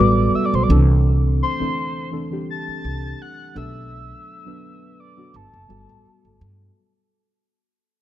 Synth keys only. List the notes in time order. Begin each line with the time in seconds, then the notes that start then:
Already playing: G3 B3 A4
0.00 F#4 B4
0.69 E3 C4 D4 A4
1.59 E3 C4 D4 A4
2.11 E3 C4 D4 A4
2.31 E3 C4 D4 G4
3.55 F#3 B3 D4 A4
4.45 F#3 B3 D4 B4
5.16 F#3 B3 D4 F#4
5.68 G3 B3 F#4 A4